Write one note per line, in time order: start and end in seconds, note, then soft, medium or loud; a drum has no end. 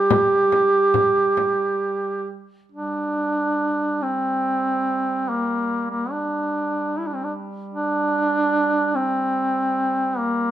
0.00 2.54 G3 soft
0.00 2.29 G4 loud
0.10 frame drum medium
0.52 frame drum medium
0.94 frame drum medium
1.37 frame drum soft
2.71 10.51 G3 soft
2.71 4.04 D4 medium
4.03 5.31 C4 medium
5.29 5.90 A#3 medium
5.90 6.13 A#3 medium
6.11 6.99 D4 medium
6.98 7.08 E4 medium
7.07 7.16 D4 medium
7.15 7.25 C4 medium
7.24 7.33 D4 medium
7.74 8.97 D4 loud
8.96 10.20 C4 medium
10.18 10.51 A#3 medium